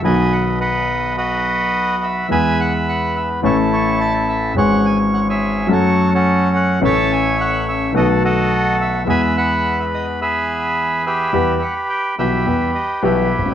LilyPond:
<<
  \new Staff \with { instrumentName = "Bandoneon" } { \time 4/4 \key e \major \tempo 4 = 106 << { gis''8 fis''8 fis''4 dis''4. e''8 | gis''8 fis''8 fis''8 e''8 cis''8 cis''8 a''8 e''8 | fis''8 gis''8 fis''16 e''8. cis''8. a'8. fis''8 | a''8 gis''8 fis''8 e''8 dis''8 dis''4 e''8 |
gis''8 fis''8. e''16 dis''8 e''4. e''8~ | \key e \minor e''8 fis''8 g''8 e''4 dis''8 b'4 | } \\ { <b' dis''>4 <b' dis''>4 <fis' b'>2 | <b' e''>2 <e' a'>2 | cis''4~ cis''16 <gis' cis''>8. <fis' a'>8. <cis' fis'>4~ <cis' fis'>16 | <cis'' e''>2 <fis' a'>8 <fis' a'>4. |
<b' e''>8 b'4. <gis' b'>4. <g' b'>8~ | <g' b'>4. <g' b'>4. <e' g'>4 | } >> }
  \new Staff \with { instrumentName = "Grand piano" } { \clef bass \time 4/4 \key e \major <b,, b, dis fis b fis'>1 | <e, e gis b gis'>2 <a,, a, e a cis' a'>2 | <gis,, gis, e gis cis' gis'>2 <fis, fis a cis' a'>2 | <a,, a, e a cis' a'>2 <b,, b, dis a b fis'>2 |
<e, e gis b gis'>1 | \key e \minor <e, e g b g'>8 r4 <b,, b, e g b g'>8 <e, e g b g'>8 r8 <b,, b, e g b g'>8 r32 gis,,32 a,,32 r32 | }
>>